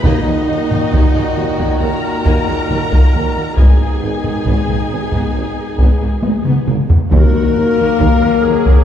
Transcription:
0.03 0.12 D#2 medium
0.03 3.54 A#2 medium
0.03 1.32 D#3 medium
0.03 3.55 D#3 medium
0.03 3.54 A#3 medium
0.03 0.25 A#3 medium
0.03 1.81 D#4 medium
0.03 3.53 F#4 medium
0.03 3.58 F#4 medium
0.03 1.77 D#5 loud
0.03 taiko loud
0.26 0.34 D#2 medium
0.26 0.34 G#3 medium
0.47 0.56 D#2 medium
0.47 0.55 D#2 medium
0.47 0.56 D#2 medium
0.47 0.56 A#3 medium
0.71 0.79 D#2 medium
0.71 0.79 A#3 medium
0.71 taiko low-mid medium
0.92 1.00 D#2 medium
0.92 1.01 D#2 medium
0.92 1.14 A#3 medium
0.92 taiko medium
1.14 1.23 D#2 medium
1.14 1.22 G#3 medium
1.14 taiko low-mid medium
1.36 1.44 D#2 medium
1.36 1.45 D#2 medium
1.36 1.44 A#3 medium
1.58 1.66 D#2 medium
1.58 1.79 A#3 medium
1.58 taiko medium
1.80 1.88 D#2 medium
1.80 1.90 D#2 medium
1.80 1.88 G#3 medium
1.80 3.54 A#4 medium
1.80 3.53 A#5 loud
2.23 2.33 D#2 medium
2.23 2.34 D#2 medium
2.23 2.45 A#3 medium
2.23 taiko medium
2.45 2.55 D#2 medium
2.45 2.53 G#3 medium
2.67 2.77 D#2 medium
2.67 2.78 D#2 medium
2.67 2.75 A#3 medium
2.67 taiko low-mid medium
2.89 2.99 D#2 medium
2.89 3.11 A#3 medium
2.89 taiko medium
3.12 3.21 D#2 soft
3.12 3.23 D#2 soft
3.12 3.22 D#2 medium
3.12 3.20 G#3 medium
3.34 3.44 D#2 soft
3.34 3.42 A#3 medium
3.55 3.65 G#1 medium
3.55 3.66 G#1 medium
3.55 6.79 G#2 medium
3.55 3.66 G#2 medium
3.55 6.75 D#3 medium
3.55 3.77 B3 medium
3.55 6.75 B3 medium
3.55 6.90 D#4 medium
3.55 6.63 G#4 medium
3.55 6.75 G#4 medium
3.55 6.67 G#5 medium
3.55 taiko medium
3.80 3.88 G#2 medium
3.80 3.88 A#3 medium
4.02 4.10 G#1 medium
4.02 4.10 G#1 soft
4.02 4.10 G#2 soft
4.02 4.10 B3 soft
4.24 4.32 G#2 medium
4.24 4.32 G#3 soft
4.24 taiko low-mid medium
4.45 4.53 G#1 medium
4.45 4.54 G#1 medium
4.45 4.54 G#2 medium
4.45 4.67 B3 medium
4.45 taiko medium
4.68 4.77 G#2 medium
4.68 4.77 A#3 soft
4.68 taiko low-mid medium
4.90 4.98 G#1 soft
4.90 4.99 G#1 soft
4.90 4.99 G#2 soft
4.90 4.99 B3 medium
5.12 5.21 G#2 medium
5.12 5.33 B3 medium
5.12 taiko medium
5.34 5.43 G#1 soft
5.34 5.42 G#1 soft
5.34 5.43 G#2 soft
5.34 5.44 A#3 soft
5.78 5.87 G#1 medium
5.78 5.86 G#1 medium
5.78 5.88 G#2 medium
5.78 5.99 B3 medium
5.78 taiko medium
6.01 6.10 G#2 soft
6.01 6.09 A#3 soft
6.23 6.32 G#1 soft
6.23 6.31 G#1 medium
6.23 6.31 G#2 soft
6.23 6.32 B3 medium
6.23 taiko high medium
6.45 6.53 G#2 medium
6.45 6.66 B3 medium
6.45 taiko mid medium
6.67 6.75 G#1 soft
6.67 6.76 G#1 soft
6.67 6.76 G#2 soft
6.67 6.76 A#3 medium
6.67 taiko mid loud
6.90 6.98 G#2 soft
6.90 6.98 B3 medium
6.90 taiko low medium
7.10 7.20 D#2 loud
7.10 7.19 D#2 medium
7.10 7.20 D#2 medium
7.10 8.40 D#3 loud
7.10 8.84 F#3 medium
7.10 8.84 A#3 loud
7.10 7.95 F#4 medium
7.10 8.84 A#4 loud
7.10 8.84 A#4 medium
7.10 8.84 A#4 loud
7.10 taiko loud
7.34 7.42 D#2 medium
7.55 7.64 D#2 medium
7.78 7.86 D#2 medium
7.99 8.08 D#2 medium
7.99 8.08 D#2 loud
7.99 8.08 D#2 medium
7.99 8.43 A#4 medium
7.99 taiko medium
8.22 8.30 D#2 medium
8.22 taiko rim soft
8.44 8.52 D#2 medium
8.44 8.53 D#2 medium
8.44 8.52 D#2 medium
8.44 8.84 G#4 medium
8.66 8.74 D#2 medium
8.66 taiko medium

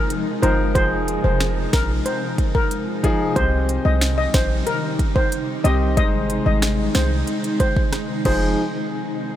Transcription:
0.00 3.32 C3 medium
0.00 0.42 F3 medium
0.00 3.32 F3 medium
0.00 3.32 G#3 medium
0.00 0.43 D#4 medium
0.00 3.32 D#4 loud
0.00 0.76 G#4 medium
0.10 closed hi-hat medium
0.42 0.77 G1 medium
0.42 0.72 F3 medium
0.42 0.73 D#4 medium
0.42 0.73 A#4 medium
0.42 0.55 C5 medium
0.42 closed hi-hat medium
0.75 1.18 F1 loud
0.75 1.95 F3 medium
0.75 1.95 D#4 medium
0.75 1.95 G#4 medium
0.75 1.01 C5 loud
0.75 kick loud
0.75 closed hi-hat medium
1.08 closed hi-hat medium
1.24 1.67 F1 loud
1.24 1.50 C5 medium
1.40 finger snap loud
1.40 snare loud
1.40 closed hi-hat medium
1.73 2.02 A#1 loud
1.73 1.99 A#4 medium
1.73 finger snap medium
1.73 kick loud
1.73 snare loud
1.73 closed hi-hat medium
2.06 2.19 C5 medium
2.06 closed hi-hat medium
2.38 kick loud
2.38 closed hi-hat medium
2.55 2.68 A#4 medium
2.55 kick loud
2.71 closed hi-hat medium
3.03 3.33 F3 medium
3.03 3.34 D#4 medium
3.03 3.34 G#4 loud
3.03 kick medium
3.03 closed hi-hat medium
3.36 3.79 C2 loud
3.36 8.21 C3 medium
3.36 8.21 D#3 medium
3.36 5.95 G3 medium
3.36 4.55 C4 medium
3.36 5.95 D#4 medium
3.36 4.56 G4 medium
3.36 3.49 C5 loud
3.36 4.56 D#5 medium
3.36 kick loud
3.36 closed hi-hat medium
3.69 closed hi-hat medium
3.85 4.28 C2 loud
3.85 3.98 D#5 medium
4.01 finger snap medium
4.01 snare loud
4.01 closed hi-hat medium
4.18 4.31 D#5 medium
4.34 4.63 A#1 medium
4.34 4.47 C5 medium
4.34 finger snap medium
4.34 kick medium
4.34 snare loud
4.34 closed hi-hat medium
4.67 4.79 A#4 medium
4.67 closed hi-hat medium
4.99 kick medium
4.99 closed hi-hat medium
5.16 5.28 C5 medium
5.16 kick loud
5.32 closed hi-hat medium
5.64 5.99 C2 medium
5.64 5.94 C4 medium
5.64 5.95 G4 medium
5.64 5.77 D#5 medium
5.64 5.95 D#5 medium
5.64 closed hi-hat medium
5.97 6.40 G#1 loud
5.97 7.16 G#3 medium
5.97 8.23 G#3 medium
5.97 8.23 D#4 medium
5.97 7.17 D#4 medium
5.97 7.17 C5 medium
5.97 6.23 D#5 loud
5.97 kick loud
5.97 closed hi-hat medium
6.30 closed hi-hat medium
6.46 6.89 G#1 medium
6.46 6.72 D#5 medium
6.62 finger snap loud
6.62 cross-stick medium
6.62 snare loud
6.62 closed hi-hat medium
6.95 7.24 C2 medium
6.95 7.21 C5 medium
6.95 finger snap medium
6.95 snare loud
6.95 closed hi-hat medium
7.27 closed hi-hat medium
7.44 closed hi-hat medium
7.60 7.73 C5 medium
7.60 kick medium
7.60 closed hi-hat medium
7.76 kick loud
7.93 cross-stick medium
7.93 snare medium
7.93 closed hi-hat medium
8.25 8.56 F1 loud
8.25 8.56 F3 medium
8.25 8.56 D#4 medium
8.25 8.56 G#4 loud
8.25 8.56 C5 medium
8.25 kick loud
8.25 crash medium

